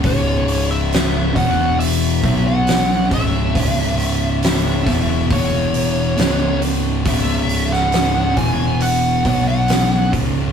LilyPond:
<<
  \new Staff \with { instrumentName = "Lead electric guitar" } { \time 4/4 \key cis \minor \tempo 4 = 68 cis''8. e''8. fis''8 e''8. fis''8. e''8~ | e''4 e''4 cis''4. r8 | e''8. fis''8. gis''8 fis''8. fis''8. r8 | }
  \new Staff \with { instrumentName = "Distorted electric guitar" } { \clef bass \time 4/4 \key cis \minor <cis, gis, cis>4. <e, b, e>4 <b, fis b>4 <cis, gis, cis>8 | <cis, gis, cis>4. <e, b, e>8 <e, b, e>4 <cis, gis, cis>4 | <cis, gis, cis>4. <e, b, e>4 <b, fis b>4 <cis, gis, cis>8 | }
  \new Staff \with { instrumentName = "Distorted electric guitar" } { \clef bass \time 4/4 \key cis \minor <cis, gis, cis>4. <e, b, e>4 <b, fis b>4 <cis, gis, cis>8 | <cis, gis, cis>4. <e, b, e>8 <e, b, e>4 <cis, gis, cis>4 | <cis, gis, cis>4. <e, b, e>4 <b, fis b>4 <cis, gis, cis>8 | }
  \new Staff \with { instrumentName = "Picked electric bass" } { \clef bass \time 4/4 \key cis \minor cis,,4. e,,4 b,,4 cis,,8 | cis,,4. e,,8 e,,4 cis,,4 | cis,,4. e,,4 b,,4 cis,,8 | }
  \new DrumStaff \with { instrumentName = "Drums" } \drummode { \time 4/4 <hho bd>8 hho8 <hho sn>8 <hho bd>8 hho8 <hho bd>8 <hho sn>8 <hho bd>8 | <hho bd>8 hho8 <hho sn>8 <hho bd sn>8 <hho bd>8 hho8 <hho sn>8 hho8 | <hho bd>8 hho16 sn16 <hho sn>8 <hho bd>8 hho8 <hho bd>8 <hho sn>8 <hho bd>8 | }
>>